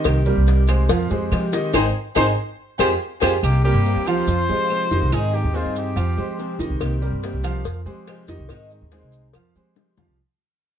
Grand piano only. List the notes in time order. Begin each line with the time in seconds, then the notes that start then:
Already playing: D#3 D#4 D#5
0.26 G3 G4 A#4
0.68 G#3 G#4 C5
0.89 F3 F4 F5
1.10 G#3 G#4 C5
1.53 D#3 D#4 D#5
1.73 D#4 G#4 C5
2.16 D#4 G#4 C5
2.80 G4 G#4 C5
3.22 G4 G#4 C5
3.64 G3 G4 A#4
4.07 F3 F4 F5
4.49 G#3 G#4 C5
4.91 D#3 D#4 D#5
5.12 D#3 D#4 D#5
5.54 C4 G#4 C5
5.96 F3 F4 F5
6.17 G#3 G4 C5
6.59 D#3 D#4 D#5
7.02 G3 G4 A#4
7.44 F3 F4 F5
7.86 G#3 G#4 C5
8.29 D#3 D#4 D#5
8.50 D#3 D#4 D#5
8.92 G#3 G#4 C5
9.35 F3 F4 F5
9.56 G#3 G#4 C5
9.98 F3 F4 F5